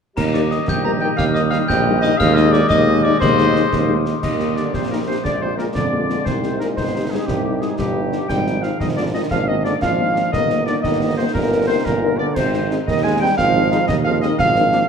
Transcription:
0.16 D#2 D#3 G3 G4 A#4 D#5 A#5, concert bass drum, snare, crash
0.34 G3 D#4 A#4 D5 D6, snare
0.51 G3 D#4 A#4 D#5 D#6, snare
0.68 A#1 G4 D#5 G5 G6, concert bass drum, snare
0.85 G3 D#4 A#4 A#5 A#6
1.01 G3 D#4 A#4 G5 G6
1.17 D#2 F5 F6, concert bass drum, snare
1.34 G3 D#4 A#4 D#5 D#6, snare
1.50 G3 D#4 A#4 F5 F6, snare
1.68 A#1 G4 D#5 G5 G6, concert bass drum, snare
1.86 G3 D#4 A#4
2.02 G3 D#4 A#4 D#5 D#6, snare
2.18 D#2 D#3 G#3 G#4 D#5 F5 F6, concert bass drum, snare, crash
2.35 G#3 D#4 G#4 D#5 D#6, snare
2.52 G#3 D#4 G#4 D5 D6, snare
2.69 D#2 G#4 D#5 D#6, concert bass drum, snare
2.88 G#3 D#4 G#4
3.04 G#3 D#4 G#4 D5 D6
3.20 D#2 G#4 C5 D#5 C6, concert bass drum, snare
3.38 G#3 D#4 G#4, snare
3.55 G#3 D#4 G#4, snare
3.73 D#2, concert bass drum, snare
3.89 G#3 D#4 G#4
4.06 G#3 D#4 G#4, snare
4.22 D#2 D#3 G3 A#3 D#5, concert bass drum, snare, crash
4.40 A#3 D#4 G4, snare
4.56 D3 A#3 D#4 G4 D5, snare
4.74 A#1 C3 C5, concert bass drum, snare
4.90 A#2 A#3 D#4 G4 A#4
5.07 C3 A#3 D#4 G4 C5
5.23 A#1 D3 G#3 D5, concert bass drum, snare
5.41 C3 A#3 F4 G#4 C5
5.58 A#2 A#3 F4 G#4 A#4, snare
5.74 F2 D3 D5, concert bass drum, snare
5.93 A#3 F4 G#4
6.09 A#3 F4 G#4, snare
6.25 C2 C3 D#4 C5, concert bass drum, snare
6.43 G3 D#4 G4, snare
6.59 A#2 G3 D#4 G4 A#4, snare
6.76 G1 C3 C5, concert bass drum, snare
6.95 G3 D#4 G4
7.11 G#2 G3 D#4 G4 G#4
7.27 C2 G2 G3 G4, concert bass drum, snare
7.45 G3 D#4 G4
7.61 G#2 G3 D#4 G4 G#4, snare
7.78 G1 G2 G4, concert bass drum, snare
7.96 G3 D#4 G4
8.12 G3 D#4 G4, snare
8.28 G#1 F3 G3 D#4 G5, concert bass drum, snare, crash
8.47 G#3 D#4 F4, snare
8.62 F3 G#3 D#4 F4 F5, snare
8.80 G#1 D#3 D#5, concert bass drum, snare
8.96 D3 G#3 D#4 F4 D5
9.13 D#3 G#3 D#4 F4 D#5
9.30 G#1 F3 A#3 D4 F5, concert bass drum, snare
9.48 D#3 A#3 D4 F4 D#5
9.64 D3 A#3 D4 F4 D5, snare
9.81 G#1 F3 F5, concert bass drum, snare
9.99 A#3 D4 F4
10.16 A#3 D4 F4, snare
10.32 G1 D#3 A#3 D#4 D#5, concert bass drum, snare
10.50 A#3 D#4 A#4, snare
10.66 D3 A#3 D#4 A#4 D5, snare
10.83 G1 D#3 D#5, concert bass drum, snare
11.01 A#3 D#4 A#4
11.17 C3 A#3 D#4 A#4 C5
11.34 G1 A#2 A#4, concert bass drum, snare
11.52 A#3 D#4 A#4
11.67 C3 A#3 D#4 A#4 C5
11.85 G1 A#2 A#4, concert bass drum, snare
12.03 A#3 D#4 A#4
12.19 D3 A#3 D#4 A#4 D5
12.35 G#1 C3 C5, concert bass drum, snare, crash
12.54 C4 D#4 G#4, snare
12.70 G#3 C4 D#4 G#4, snare
12.86 D#2 D#3 D#5, concert bass drum, snare
13.03 G#3 C4 D#4 G#4 G#5
13.20 G3 G#3 C4 D#4 G#4 G5
13.37 G#1 F3 F5, concert bass drum, snare
13.55 C4 D#4 G#4
13.71 G#3 C4 D#4 G#4, snare
13.87 D#2 D#3 D#5, concert bass drum, snare
14.05 F3 C4 D#4 G#4 F5
14.21 D#3 G#3 C4 D#4 G#4 D#5, snare
14.38 G#1 F3 F5, concert bass drum, snare
14.56 A#3 D4 A#4, snare
14.71 A#3 D4 A#4, snare

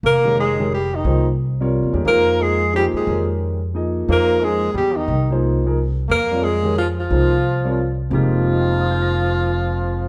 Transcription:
0.03 F1 A#3 A#4
0.24 D#3 G#3 C#4 G4 A#4
0.39 G#3 G#4
0.58 D#3 G#3 C#4 G4 A#4
0.72 G3 G4
0.94 D#3 D#4
1.04 C2 F3 A#3 D#4 G#4 C5
1.60 C3 G3 F4 A#4 C#5
1.83 D#2
1.93 E2 D#3 G#3 C#4 G4 A#4
2.05 F2 F3 A#3 D#4 G#4 A#4 C5
2.41 G#3 G#4
2.73 F3 G3 A#3 D#4 G4 G#4 C5
2.93 G#3 G#4, muted upright bass stroke
3.07 F2 D#3 G#3 C#4 G4 A#4
3.74 F3 A#3 D#4 G#4 D#5
4.08 F2 F3 A#3 D#4 G#4 A#4 C5
4.42 F3 G#3 A#3 D#4 G#4 C5
4.74 E2 G3 G4
4.96 D#3 D#4
5.08 C2
5.31 F3 A#3 D#4 G#4 C5
5.65 F3 A#3 D#4 G#4 A#4
6.08 F2 A#3 A#4
6.31 G3 C4 F4 A#4 C#5
6.42 G#3 G#4
6.63 D#3 G#3 C#4 G4 A#4
6.78 F3 F4
6.99 F3 F4
7.10 C2 F3 A#3 D#4 G#4 C5
7.64 G3 C4 F4 A#4 C#5
8.10 F1 F2 F3 G#3 A#3 D#4 G4
8.14 F4
8.46 A#4
8.53 D#5
8.61 G5
8.70 A#5
8.80 D#6
8.91 G6
9.02 A#6

